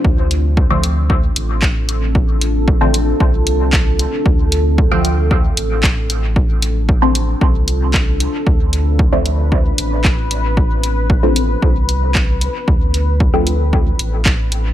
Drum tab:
HH |-x-x-x-x|-x-x-x-x|-x-x-x-x|-x-x-x-x|
CP |------x-|------x-|------x-|------x-|
BD |o-o-o-o-|o-o-o-o-|o-o-o-o-|o-o-o-o-|

HH |-x-x-x-x|-x-x-x-x|-x-x-x-x|
CP |------x-|------x-|------x-|
BD |o-o-o-o-|o-o-o-o-|o-o-o-o-|